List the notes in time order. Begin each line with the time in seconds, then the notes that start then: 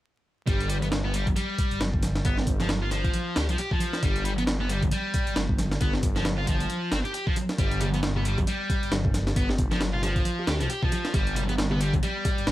0.47 G1 G3, kick, closed hi-hat
0.61 closed hi-hat
0.70 G3, closed hi-hat
0.82 B3, closed hi-hat, high conga
0.92 snare, closed hi-hat
1.04 B3
1.14 G3, closed hi-hat
1.27 kick, closed hi-hat
1.36 G3, closed hi-hat, high conga
1.58 kick, closed hi-hat
1.71 G1, closed hi-hat
1.80 G1, snare, closed hi-hat
1.93 kick
2.03 snare, closed hi-hat, high conga
2.15 snare, closed hi-hat
2.25 G1 B3, kick, closed hi-hat
2.38 snare
2.47 kick, closed hi-hat
2.60 F3, snare, closed hi-hat, high conga
2.69 snare, closed hi-hat
2.83 F4
2.91 F3, snare, closed hi-hat
3.04 kick, closed hi-hat
3.14 closed hi-hat, high conga
3.36 D2 G4, snare, closed hi-hat
3.49 B1 F3, closed hi-hat
3.58 G4, closed hi-hat
3.71 F3, kick
3.79 closed hi-hat, high conga
3.93 snare, closed hi-hat
4.03 G1 G3, kick, closed hi-hat
4.16 closed hi-hat
4.25 G3, closed hi-hat
4.38 B3, closed hi-hat, high conga
4.47 snare, closed hi-hat
4.60 B3
4.69 G3, closed hi-hat
4.82 kick, closed hi-hat
4.91 G3, closed hi-hat, high conga
5.14 kick, closed hi-hat
5.27 G1, closed hi-hat
5.36 G1, snare, closed hi-hat
5.49 kick
5.58 snare, closed hi-hat, high conga
5.71 snare, closed hi-hat
5.81 G1 B3, kick, closed hi-hat
5.93 snare
6.03 kick, closed hi-hat
6.16 F3, snare, closed hi-hat, high conga
6.25 snare, closed hi-hat
6.38 F4
6.47 F3, kick, closed hi-hat
6.60 closed hi-hat
6.69 closed hi-hat, high conga
6.92 G1 C4, snare, closed hi-hat
7.05 G4, closed hi-hat
7.14 G4, closed hi-hat
7.27 F3, kick
7.36 closed hi-hat, high conga
7.49 snare, closed hi-hat
7.58 G1 G3, kick, closed hi-hat, high bongo
7.71 closed hi-hat
7.81 G3, closed hi-hat, high bongo, low conga
7.94 B3, closed hi-hat, high conga
8.03 snare, closed hi-hat
8.15 B3, high bongo, low conga
8.25 G3, closed hi-hat
8.38 kick, closed hi-hat, high bongo
8.47 G3, closed hi-hat, high conga
8.70 kick, closed hi-hat, high bongo
8.82 G1, closed hi-hat
8.92 G1, snare, closed hi-hat, high bongo
9.04 kick, low conga
9.14 snare, closed hi-hat, high conga
9.27 snare, closed hi-hat, high bongo
9.36 G1 B3, kick, closed hi-hat
9.49 snare, high bongo
9.58 kick, closed hi-hat, low conga
9.71 F3, snare, closed hi-hat, high conga
9.81 snare, closed hi-hat, high bongo
9.94 F4, low conga
10.03 F3, snare, closed hi-hat, high bongo
10.16 kick, closed hi-hat
10.25 closed hi-hat, high conga
10.39 high bongo
10.47 D2 G4, snare, closed hi-hat
10.60 B1 F3, closed hi-hat, high bongo
10.70 G4, closed hi-hat
10.82 F3, kick, low conga
10.92 closed hi-hat, high bongo, high conga
11.05 snare, closed hi-hat
11.13 G1 G3, kick, closed hi-hat, high bongo
11.27 closed hi-hat
11.36 G3, closed hi-hat, low conga
11.49 B3, closed hi-hat, high bongo, high conga
11.58 snare, closed hi-hat
11.71 B3, high bongo, low conga
11.81 G3, closed hi-hat
11.94 kick, closed hi-hat
12.03 G3, closed hi-hat, high bongo, high conga
12.25 kick, closed hi-hat, high bongo
12.38 G1, closed hi-hat
12.47 G1, snare, closed hi-hat